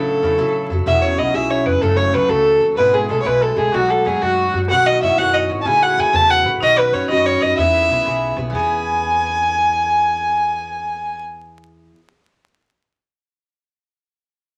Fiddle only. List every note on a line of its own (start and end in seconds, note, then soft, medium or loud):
0.00 0.71 A4 loud
0.87 1.04 E5 loud
1.02 1.20 C#5 loud
1.18 1.36 D#5 loud
1.35 1.52 E5 loud
1.50 1.68 C#5 medium
1.66 1.83 B4 loud
1.81 1.98 A4 loud
1.97 2.16 C#5 loud
2.14 2.31 B4 loud
2.29 2.66 A4 loud
2.77 2.95 B4 loud
2.94 3.10 G#4 loud
3.10 3.21 A4 medium
3.22 3.28 C#5 medium
3.27 3.44 B4 loud
3.42 3.60 A4 medium
3.58 3.76 G#4 loud
3.75 3.92 F#4 loud
3.90 4.09 A4 loud
4.07 4.24 G#4 loud
4.22 4.58 F#4 loud
4.70 4.88 F#5 loud
4.86 5.02 D#5 loud
5.03 5.20 E5 loud
5.18 5.35 F#5 loud
5.34 5.50 D#5 loud
5.61 5.67 A5 medium
5.66 5.84 G#5 loud
5.83 6.01 F#5 loud
6.00 6.17 G#5 loud
6.15 6.32 A5 loud
6.31 6.46 F#5 loud
6.63 6.80 D#5 loud
6.78 6.95 B4 loud
6.94 7.09 C#5 loud
7.10 7.28 D#5 loud
7.26 7.43 C#5 loud
7.42 7.57 D#5 loud
7.58 8.33 E5 loud
8.55 11.22 G#5 loud